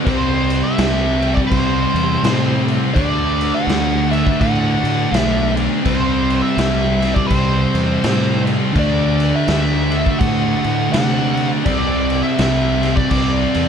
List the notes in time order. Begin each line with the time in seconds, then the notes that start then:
0.06 C2 C3 G3 C4 C5, kick, crash
0.50 crash
0.63 E5
0.78 C2, snare, crash
1.22 C3 G3 C4, crash
1.34 D5, kick
1.47 C5
1.51 C2, kick, crash
1.94 E2, crash
2.22 A2 C3 G3 C4, snare, crash
2.68 crash
2.94 D2 D3 A3 D4 D5, kick, crash
3.41 crash
3.54 F#5
3.67 D2, snare, crash
4.10 D3 A3 D4 E5, crash
4.27 kick
4.41 A2 F#5, kick, crash
4.83 A2, crash
5.11 B1 D3 A3 D4, snare, crash
5.19 E5
5.57 crash
5.84 C2 C3 G3 C4 C5, kick, crash
6.30 crash
6.42 E5
6.57 C2, snare, crash
7.00 C3 G3 C4, snare, crash
7.14 D5, kick
7.27 C2 C5, kick, crash
7.74 E2, crash
8.02 A2 C3 G3 C4, snare, crash
8.47 crash
8.74 D2 D3 A3 D4, kick, crash
8.79 D5
9.20 crash
9.36 E5
9.47 D2 E5, snare, crash
9.91 D3 A3 D4, crash
10.06 kick
10.19 A2 F#5, kick, crash
10.64 A2, crash
10.92 C3 D3 A3 D4 F#5, snare, crash
11.37 crash
11.64 C2 C3 G3 C4 D5, kick, crash
12.10 crash
12.23 E5
12.39 C2, snare, crash
12.82 G3 C4, snare, crash
12.96 D5, kick
13.10 C2 D5, kick, crash
13.54 E2, crash